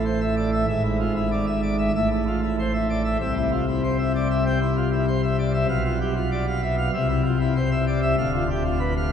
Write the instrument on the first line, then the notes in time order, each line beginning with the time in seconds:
pipe organ
Already playing: A1 A2
0.05 C5
0.21 E5
0.37 D5
0.52 E5
0.68 G#1 G#2 E5
0.84 E4
1.00 F4
1.16 E4
1.31 D5
1.47 E5
1.63 D5
1.79 E5
1.96 A1 A2 E5
2.11 E4
2.28 F4
2.43 E4
2.59 C5
2.74 E5
2.90 D5
3.05 E5
3.21 C2 C3 E5
3.37 E4
3.52 F4
3.68 E4
3.84 C5
3.99 E5
4.15 D5
4.31 E5
4.46 C4 G5
4.62 E4
4.77 F4
4.93 E4
5.08 C5
5.23 E5
5.39 D5
5.54 E5
5.69 B1 B2 F5
5.85 F4
6.01 G4
6.16 F4
6.32 D5
6.47 F5
6.62 E5
6.78 F5
6.94 C2 C3 E5
7.09 E4
7.25 F4
7.40 E4
7.56 C5
7.71 E5
7.87 D5
8.02 E5
8.18 D1 D2 F5
8.34 F4
8.50 G4
8.65 F4
8.80 B4
8.97 F5